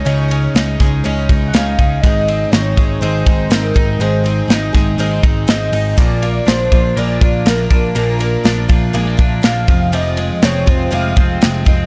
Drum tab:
RD |xxxxxxxx|xxxxxxxx|xxxxxxxx|xxxxxxxx|
HH |--------|--------|-------o|p-------|
SD |--oo--o-|--o---o-|--oo--o-|--o---o-|
BD |---o-o-o|o--o-o-o|---o-o--|o--o-o-o|

RD |xxxxxxxx|xxxxxxxx|
HH |--------|--------|
SD |--o---o-|--o---o-|
BD |---o-o-o|---o-o-o|